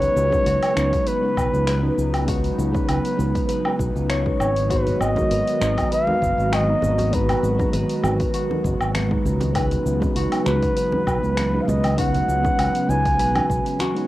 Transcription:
Already playing: C#3 F#3 G#3 B3 C#4 D#4 F#4 B4 C#5
0.02 open hi-hat, cabasa
0.16 C#2, cabasa
0.30 G#3 C#4 D#4 F#4 B4, kick, cabasa
0.46 C#2 F#4, open hi-hat, cabasa
0.63 open hi-hat, cabasa, low woodblock
0.74 C#2 G#3 C#4 D#4 F#4 B4, finger snap, cabasa
0.93 kick, open hi-hat, cabasa
1.07 B4, open hi-hat, cabasa
1.22 G#3 C#4 D#4 F#4 B4
1.37 B1, kick, cabasa, low woodblock
1.53 C#2, cabasa
1.67 B4, finger snap, open hi-hat, cabasa
1.82 G#3 C#4 D#4 F#4 B4
1.98 C#2, cabasa
2.14 open hi-hat, cabasa, low woodblock
2.26 G#3 C#4 D#4 F#4 B4, kick, open hi-hat, cabasa
2.44 open hi-hat, cabasa
2.58 C#2, cabasa
2.72 G#3 C#4 D#4 F#4 B4, kick, cabasa
2.88 C#2 B4, open hi-hat, cabasa, low woodblock
3.05 open hi-hat, cabasa
3.17 C#2 G#3 C#4 D#4 F#4 B4, cabasa
3.35 kick, open hi-hat, cabasa
3.49 B4, open hi-hat, cabasa
3.64 G#3 C#4 D#4 F#4 B4, low woodblock
3.79 B1, kick, cabasa
3.95 C#2, cabasa
4.09 C#5, finger snap, open hi-hat, cabasa
4.25 G#3 C#4 D#4 F#4 B4, kick
4.40 G#1 C#5, cabasa, low woodblock
4.56 open hi-hat, cabasa
4.69 D#3 F#3 G#3 B3 D#4 F#4 B4, kick, open hi-hat, cabasa
4.87 open hi-hat, low conga, cabasa
5.01 G#1 D#5, cabasa, low woodblock
5.15 G#3 B3 D#4 F#4 A#4, kick, high conga, cabasa
5.31 G#1 B4, open hi-hat, cabasa
5.47 open hi-hat, cabasa
5.60 G#1 G#3 B3 D#4 F#4 A#5, finger snap, cabasa
5.78 kick, open hi-hat, cabasa, low woodblock
5.91 B4 F5, open hi-hat, cabasa
6.06 G#3 B3 D#4 F#4 A#4, high conga
6.22 F#1, kick, cabasa
6.38 G#1, cabasa
6.52 F#4 D#5, finger snap, open hi-hat, high conga, cabasa, low woodblock
6.67 G#3 B3 D#4 F#4 A#5
6.82 G#1, low conga, cabasa
6.98 open hi-hat, high conga, cabasa
7.11 G#3 B3 D#4 F#4 B4 A#5, kick, open hi-hat, cabasa
7.29 open hi-hat, low conga, cabasa, low woodblock
7.43 G#1, cabasa
7.57 G#3 B3 D#4 F#4 A#5, kick, high conga, cabasa
7.73 G#1 B4, open hi-hat, cabasa
7.89 open hi-hat, cabasa
8.02 G#1 G#3 B3 D#4 F#4 A#5, high conga, cabasa, low woodblock
8.20 kick, open hi-hat, cabasa
8.34 F#4, open hi-hat, cabasa
8.49 G#3 B3 D#4 F#4 A#4, high conga
8.64 F#1, kick, cabasa
8.80 G#1, cabasa, low woodblock
8.94 B4, finger snap, open hi-hat, high conga, cabasa
9.10 G#3 B3 D#4 F#4 A#5, kick
9.25 C#2, low conga, cabasa
9.40 open hi-hat, high conga, cabasa
9.54 C#3 F#3 G#3 B3 C#4 D#4 F#4 B4, kick, open hi-hat, cabasa, low woodblock
9.71 open hi-hat, low conga, cabasa
9.86 C#2, cabasa
10.00 G#3 C#4 D#4 F#4 B4, kick, high conga, cabasa
10.15 C#2 F#4, open hi-hat, cabasa
10.32 open hi-hat, cabasa, low woodblock
10.44 C#2 G#3 C#4 D#4 F#4 B4, finger snap, high conga, cabasa
10.62 kick, open hi-hat, cabasa
10.77 B4, open hi-hat, cabasa
10.91 G#3 C#4 D#4 F#4 B4, high conga
11.07 B1, kick, cabasa, low woodblock
11.23 C#2, cabasa
11.37 B4, finger snap, open hi-hat, high conga, cabasa
11.52 G#3 C#4 D#4 F#4 B4
11.62 F5
11.68 C#2 D#5, low conga, cabasa
11.84 open hi-hat, high conga, cabasa, low woodblock
11.96 G#3 C#4 D#4 F#4 B4 F#5, kick, open hi-hat, cabasa
12.15 open hi-hat, low conga, cabasa
12.28 C#2, cabasa
12.43 G#3 C#4 D#4 F#4 B4, kick, high conga, cabasa
12.58 C#2 B4, open hi-hat, cabasa, low woodblock
12.75 open hi-hat, cabasa
12.87 C#2 G#3 C#4 D#4 F#4 B4 G#5, cabasa
13.05 kick, open hi-hat, cabasa
13.19 B1 B4, open hi-hat, cabasa
13.34 G#3 C#4 D#4 F#4 B4, open hi-hat, high conga, low woodblock
13.50 B1, kick, cabasa
13.66 open hi-hat, cabasa
13.79 F#4, finger snap, open hi-hat, high conga, cabasa
13.94 G#3 C#4 D#4 F#4 B4, open hi-hat

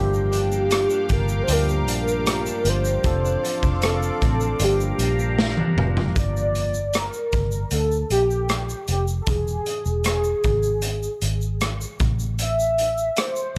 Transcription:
Already playing: G1 G2 F3 G3 A#3 D4 G4 F5 G5 D6
0.13 A#3, shaker
0.32 D4, closed hi-hat, shaker
0.51 A#3, shaker
0.70 F3, cross-stick, closed hi-hat, shaker
0.90 D4, shaker
1.09 G1 F3 A#4, kick, closed hi-hat, shaker
1.28 A#3, shaker
1.44 F3 C5
1.48 D2 G2 A3 D4 G4, closed hi-hat, shaker
1.52 A#3 A#4
1.68 A#3, shaker
1.87 A#1 D4, closed hi-hat, shaker
2.08 A#3, shaker
2.27 F3, cross-stick, closed hi-hat, shaker
2.46 D4, shaker
2.65 G1 F3, closed hi-hat, shaker
2.69 C5
2.84 A#3, shaker
3.04 F1 F3 C4 D4 A4 F5 C6 D6, kick, closed hi-hat, shaker
3.25 D4, shaker
3.43 A4, closed hi-hat, shaker
3.63 F1 D4, kick, shaker
3.82 C4 A4, cross-stick, closed hi-hat, shaker
4.02 A4, shaker
4.22 A1 C4, kick, closed hi-hat, shaker
4.41 D4, shaker
4.60 G1 G2 F3 A#3 D4 F4 G4 F5 A#5, closed hi-hat, shaker
4.64 G4
4.69 G4
4.80 A#3, shaker
4.99 A#1 D4, closed hi-hat, shaker
5.19 A#3, shaker
5.39 F3, snare
5.57 D4, high tom
5.76 F1 F3, mid tom
5.97 A#3, floor tom
6.16 G1 D5, kick, closed hi-hat, shaker
6.37 shaker
6.55 closed hi-hat, shaker
6.74 shaker
6.94 A#4, cross-stick, closed hi-hat, shaker
7.13 shaker
7.32 G1, kick, closed hi-hat, shaker
7.51 shaker
7.71 D2 A4, closed hi-hat, shaker
7.91 shaker
8.10 A#1 G4, closed hi-hat, shaker
8.30 shaker
8.49 cross-stick, closed hi-hat, shaker
8.69 shaker
8.88 F1 G4, closed hi-hat, shaker
9.08 shaker
9.21 A4
9.27 E1 G#4, kick, closed hi-hat, shaker
9.47 shaker
9.66 closed hi-hat, shaker
9.85 E1, shaker
10.04 G#4, cross-stick, closed hi-hat, shaker
10.24 shaker
10.44 G#1, kick, closed hi-hat, shaker
10.63 shaker
10.82 closed hi-hat, shaker
11.03 shaker
11.22 G#1, closed hi-hat, shaker
11.41 shaker
11.61 cross-stick, closed hi-hat, shaker
11.81 shaker
12.00 A1, kick, closed hi-hat, shaker
12.19 shaker
12.39 E5, closed hi-hat, shaker
12.59 shaker
12.78 closed hi-hat, shaker
12.98 shaker
13.17 C5, cross-stick, closed hi-hat, shaker
13.36 shaker

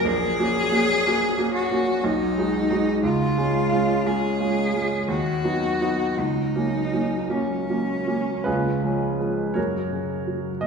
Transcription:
0.05 A#1 G#4
0.40 A#3 C#4 F#4
0.71 A#3 C#4 F#4
1.06 A#3 C#4 F#4
1.38 A#3 C#4 F#4
1.54 F#4
1.71 A#3 C#4 F#4
2.04 B1 D#4
2.38 G#3 D#4 F#4
2.71 G#3 D#4 F#4
3.03 C#2 F4
3.38 G#3 C#4 F4
3.72 G#3 C#4 F4
4.06 G#3 C#4 F4 G#4
4.40 G#3 C#4 F4
4.74 G#3 C#4 F4
5.08 D#2 F#4
5.44 F#3 B3 D#4
5.81 F#3 B3 D#4
6.17 C#2 D#4
6.56 F#3 A#3 C#4
6.93 F#3 A#3 C#4
7.29 F#3 A#3 C#4
7.70 F#3 A#3 C#4
8.07 F#3 A#3 C#4
8.44 C#2 F4 G#4 B4
8.84 F3 G#3 C#4
9.20 F3 G#3 C#4
9.54 F#2 F#4 A#4 C#5
9.93 C#3
10.27 F#3
10.61 A#3 D#5

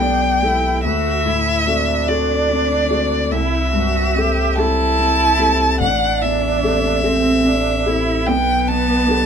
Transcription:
Already playing: B1 B2 G4 A4 G5
0.00 B3 D4
0.42 B3 E4 G4 A4
0.84 D2 F#4 E5
1.25 A2 E4
1.67 C4 D4 F#4 A4
2.08 C4 F#4 A4 D5
2.50 C4
2.90 C4 F#4 A4
3.31 C2 E4 E5
3.73 G2 F#4
4.16 C4 G4 A4
4.57 C4 E4 G4 A4 A5
4.99 C4
5.39 C4 G4 A4
5.80 A1 D4 F#5
6.21 E2 E5
6.63 C4 G4 A4
7.03 C4 G4 A4
7.44 C4 D4
7.86 C4 E4 G4 A4
8.27 B1 B3 G5
8.68 B2 A5
9.08 D4 G4 A4

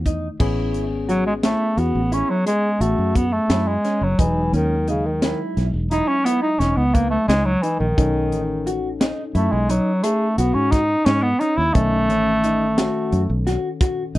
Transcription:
Already playing: E2 D#3 A3 D#4
0.06 D#4, kick, closed hi-hat
0.40 A1 B3 C#4 E4 G#4, kick, crash
0.74 G#1, closed hi-hat
1.09 F#3 F#4, closed hi-hat
1.27 G#3
1.43 A3 E4, snare, closed hi-hat
1.77 E2 B3 F#4, closed hi-hat
1.95 A1
2.12 C#4 E4, closed hi-hat
2.30 F#3
2.46 G#3 G#4, closed hi-hat
2.80 A1 A3 F#4, closed hi-hat
2.98 F#2
3.15 B3, kick, closed hi-hat
3.33 A3
3.49 F#2 E4, snare, closed hi-hat
3.68 G#3
3.85 C#4, snare, closed hi-hat
4.01 F#1 F#3
4.18 E1 E3 F#3 G#3 D#4, kick, closed hi-hat
4.53 D#2 D#3 C#4, closed hi-hat
4.88 C#3 D#4, closed hi-hat
5.06 D#3
5.22 E4, snare, closed hi-hat
5.57 B1, snare, closed hi-hat
5.74 E1
5.91 D#4 E4, closed hi-hat
6.08 C#4
6.25 B3 E4, closed hi-hat
6.42 D#4
6.59 E1 C#4 D#4, snare, closed hi-hat
6.77 C#2 B3
6.94 A#3 B3, kick, closed hi-hat
7.10 A3
7.28 C#2 G#3 D#4, snare, closed hi-hat
7.45 F#3
7.62 E3 D#4, closed hi-hat
7.79 A#1 D#3
7.97 B1 C#4 D#4 A4, kick, closed hi-hat
8.32 A1, closed hi-hat
8.67 F#4, closed hi-hat
9.01 D#4, snare, closed hi-hat
9.35 F#2 A3 E4, closed hi-hat
9.52 B1 G#3
9.69 F#3 D#4, closed hi-hat
10.03 A3 G#4, closed hi-hat
10.38 B1 B3 F#4, closed hi-hat
10.54 G#2 C#4
10.72 D#4, kick, snare, closed hi-hat
11.06 G#2 C#4 D#4, snare, closed hi-hat
11.22 B3
11.40 C#4 D#4, closed hi-hat
11.57 D#2 E4
11.74 B1 D#3 A3 C#4 D#4 A4, kick, closed hi-hat
12.09 A1 C#4, closed hi-hat
12.44 D#4, closed hi-hat
12.78 F#4, snare, closed hi-hat
13.12 F#2, closed hi-hat
13.30 B1
13.47 F#4, snare, closed hi-hat
13.81 F#4, kick, snare, closed hi-hat
14.15 B1 D#4, closed hi-hat

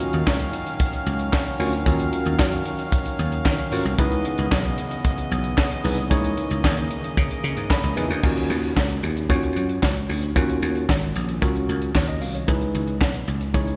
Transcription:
Already playing: D#3 F#3 C#4 F4 F#4 A#4 F5
0.00 closed hi-hat
0.13 D#2, closed hi-hat
0.27 C#2, kick, snare, clap
0.40 closed hi-hat
0.53 closed hi-hat
0.67 closed hi-hat
0.80 kick, closed hi-hat
0.93 closed hi-hat
1.06 C#2, closed hi-hat
1.19 closed hi-hat
1.33 kick, snare, clap
1.46 closed hi-hat
1.59 D2 C#4 F4 F#4 A#4, open hi-hat
1.73 closed hi-hat
1.86 D#2 C#4 F4 F#4 A#4, kick, closed hi-hat
2.00 closed hi-hat
2.13 closed hi-hat
2.25 D#2, closed hi-hat
2.39 F#2, kick, snare, clap
2.52 closed hi-hat
2.65 closed hi-hat
2.79 closed hi-hat
2.92 kick, closed hi-hat
3.06 closed hi-hat
3.19 D#2, closed hi-hat
3.32 closed hi-hat
3.45 D#3, kick, snare, clap
3.59 closed hi-hat
3.72 G#2 C#4 F4 F#4 A#4, open hi-hat
3.85 C2, closed hi-hat
3.98 C#2 C#3 E3 B3 D#4 E4 G#4 B4 D#5, kick, closed hi-hat
4.12 closed hi-hat
4.25 closed hi-hat
4.38 C#2, closed hi-hat
4.52 B1, kick, snare, clap
4.65 closed hi-hat
4.78 closed hi-hat
4.91 closed hi-hat
5.05 kick, closed hi-hat
5.18 closed hi-hat
5.31 B1, closed hi-hat
5.44 closed hi-hat
5.58 kick, snare, clap
5.71 closed hi-hat
5.84 C2 D#4 E4 G#4 B4, open hi-hat
5.98 closed hi-hat
6.10 C#2 A#3 D#4 E4 G#4 C#5, kick, closed hi-hat
6.24 closed hi-hat
6.37 closed hi-hat
6.50 C#2, closed hi-hat
6.64 D#2, kick, snare, clap
6.77 closed hi-hat
6.91 closed hi-hat
7.04 closed hi-hat
7.17 C#3, kick, closed hi-hat
7.31 closed hi-hat
7.44 C#3, closed hi-hat
7.57 G#2, closed hi-hat
7.70 B5, kick, snare, clap
7.84 C#2, closed hi-hat
7.96 E2 D#4 E4 G#4 B4 G#5, closed hi-hat
8.10 D2, closed hi-hat
8.23 D#2 C#4 F4 F#4 A#4, kick, crash
8.37 closed hi-hat
8.50 D#2, closed hi-hat
8.63 closed hi-hat
8.77 C#2, kick, snare, clap
8.90 closed hi-hat
9.03 D#2, closed hi-hat
9.17 closed hi-hat
9.29 D#2 C#4 F4 F#4 C#5, kick, closed hi-hat
9.43 closed hi-hat
9.56 F#2, closed hi-hat
9.69 closed hi-hat
9.83 C#2, kick, snare, clap
9.96 closed hi-hat
10.09 D2, open hi-hat
10.23 closed hi-hat
10.35 D#2 C#4 F4 F#4 A#4, kick, closed hi-hat
10.50 closed hi-hat
10.62 D#2, closed hi-hat
10.75 closed hi-hat
10.89 G#1, kick, snare, clap
11.02 closed hi-hat
11.16 A#1, closed hi-hat
11.29 closed hi-hat
11.41 C#2 C#4 F4 F#4 A#4, kick, closed hi-hat
11.56 closed hi-hat
11.69 C#2, closed hi-hat
11.82 closed hi-hat
11.95 D#2 C#5, kick, snare, clap
12.08 D#5, closed hi-hat
12.21 C2 F5, open hi-hat
12.35 C#5, closed hi-hat
12.47 C#2 D#4 E4 G#4 B4, kick, closed hi-hat
12.61 closed hi-hat
12.74 C#2, closed hi-hat
12.88 closed hi-hat
13.01 B1, kick, snare, clap
13.14 closed hi-hat
13.28 C#2, closed hi-hat
13.41 closed hi-hat
13.54 C#2 D#4 E4 G#4 C#5, kick, closed hi-hat
13.68 closed hi-hat

